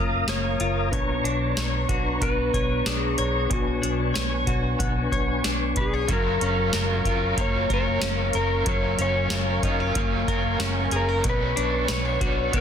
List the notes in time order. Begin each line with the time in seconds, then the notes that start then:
Already playing: F#1 F#3 A#3 C#4 F4 A#4 F5 A#5 D#6
0.27 F#1 A#3 C#5, snare, closed hi-hat
0.60 F#1 F4, closed hi-hat
0.91 B1 B2 D4 B4 C#5 C#6, kick, closed hi-hat
1.24 B1 D4, closed hi-hat
1.56 B1 C#5, snare, closed hi-hat
1.89 B1 F#4, kick, closed hi-hat
2.21 B1 B3 B4, kick, closed hi-hat
2.53 B1 C#5, kick, closed hi-hat
2.86 B1 D4 G#4, snare, closed hi-hat
3.18 B1 C#5, closed hi-hat
3.50 B1 B2 F#4 G#5, kick, closed hi-hat
3.82 B1 D4, closed hi-hat
4.14 B1 C#5, snare, closed hi-hat
4.47 B1 F#4, kick, closed hi-hat
4.79 B1 B3, kick, closed hi-hat
5.12 B1 C#5, kick, closed hi-hat
5.44 B1 D4, snare, closed hi-hat
5.76 B1 B4, kick, closed hi-hat
5.81 G#4
5.94 C#5
6.07 F#1 F#2 C#3 F#3 C#4 F4 A#4 F5 A#5, kick, closed hi-hat
6.13 A#4
6.39 F#1 C#4 F4 A#4, closed hi-hat
6.44 F#3
6.72 F#1 F#2 C#3 F#3 C#4 F4 A#4, snare, closed hi-hat
7.05 F#1 C#4 F4 A#4, kick, closed hi-hat
7.09 F#3
7.37 F#1 F#3 A#3 C#4 F4, kick, closed hi-hat
7.41 A#4 C#5
7.69 F#1 C#4 F4 A#4, kick, closed hi-hat
7.74 F#3 C#5
8.02 F#1 F#2 C#3 F#3 C#4 F4 A#4, snare, closed hi-hat
8.33 F#1 C#4 F4 A#4, closed hi-hat
8.38 F#3
8.66 F#1 F#2 C#3 F#3 C#4 F4 A#4 C#5 G#5, kick, closed hi-hat
8.98 F#1 C#4 F4 A#4 C#5, closed hi-hat
9.02 F#3
9.30 F#1 F#2 C#3 F#3 C#4 F4 A#4, snare, closed hi-hat
9.62 F#1 C#4 D#4 F4 A#4, kick, closed hi-hat
9.67 F#3
9.80 F4
9.94 F#1 F#3 A#3 C#4 F4, kick, closed hi-hat
9.99 A#4
10.26 F#1 C#4 F4 A#4, kick, closed hi-hat
10.31 F#3
10.59 F#2 C#3 F#3 C#4 F4 A#4, snare, closed hi-hat
10.90 F#1 C#4 F4 G#4 A#4, closed hi-hat
10.95 F#3 A#4
11.09 A#4
11.23 B1 B2 F#3 C#4 D4 F#4 B4 C#5, kick, closed hi-hat
11.29 B4
11.54 B1 C#4 D4 F#4, closed hi-hat
11.59 D4
11.87 B1 B2 F#3 C#4 D4 F#4 B4, snare, closed hi-hat
11.92 C#5
12.05 C#5
12.19 B1 C#4 F#4, kick, closed hi-hat
12.24 D4
12.51 B1 F#3 B3 C#4 D4, kick, closed hi-hat
12.56 F#4 B4